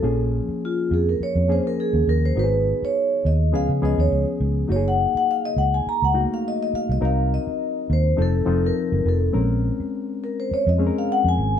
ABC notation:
X:1
M:4/4
L:1/16
Q:"Swing 16ths" 1/4=103
K:Bbm
V:1 name="Vibraphone"
=A z3 F2 _A B d2 c B A2 B c | _c3 d3 e2 f2 e d2 z3 | d g2 g f e g a b g2 f e e f e | f2 e4 c2 =A3 B3 A2 |
z6 B c d e2 f g a2 z |]
V:2 name="Reed electric piano"
[F,B,DA]6 z4 [F,B,DA]4 z2 | [G,_CEGA]6 z2 [F,CDA]2 [F,CDA]4 z2 | [G,B,EGA]6 z4 [G,=A,B,EG]4 z2 | [G,CEB]6 z2 [F,CE=A]2 [F,CEF]4 z2 |
[A,CDB]6 z4 [A,CDAB]4 z2 |]
V:3 name="Fingered electric bass" clef=bass
B,,,3 z3 F,,2 z F,,2 z2 E,, E,,2 | A,,,3 z3 E,,2 D,, D, D,, E,, D,, z D,,2 | G,,,3 z3 D,,2 z D,,2 z4 C,, | C,,3 z3 E,,2 F,,,2 F,,,2 z G,,, F,,,2 |
B,,,3 z6 F,,2 z2 F,, A,,,2 |]